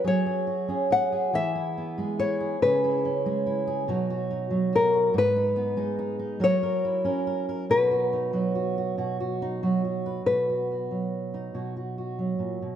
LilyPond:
<<
  \new Staff \with { instrumentName = "Nylon-string guitar" } { \time 6/8 \key b \major \tempo 4. = 47 cis''4 fis''8 e''4 cis''8 | b'2 r8 ais'8 | b'4. cis''4. | b'2~ b'8 r8 |
b'2. | }
  \new Staff \with { instrumentName = "Steel-string acoustic guitar" } { \time 6/8 \key b \major << { gis'16 gis'16 fis'16 gis'16 gis'16 gis'16 gis'16 e'16 b16 gis'16 e'16 gis'16 | gis'16 e'16 cis'16 gis'16 e'16 gis'16 <fis dis' fis'>16 fis'16 dis'8 fis'16 fis'16 | dis'16 dis'16 b16 dis'16 dis'16 dis'16 ais'16 ais'16 e'16 ais'16 ais'16 ais'16 | fis'16 fis'16 dis'16 fis'16 fis'16 fis'16 fis'16 fis'16 dis'16 fis'16 fis'16 b'16 |
fis'16 fis'16 fis'8. dis'16 fis'16 fis'16 fis'4 | } \\ { fis8. cis'8. e8. gis8. | cis8. gis8. b,8. fis8. | gis,8. gis8. fis8. cis'8. | b,8. fis8. b,8. fis8. |
b,8. fis8. b,8. fis16 ais,16 b,16 | } >> }
>>